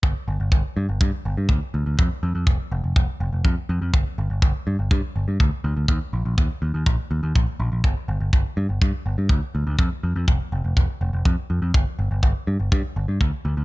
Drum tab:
BD |o-o-o-o-|o-o-o-o-|o-o-o-o-|o-o-o-o-|

BD |o-o-o-o-|o-o-o-o-|o-o-o-o-|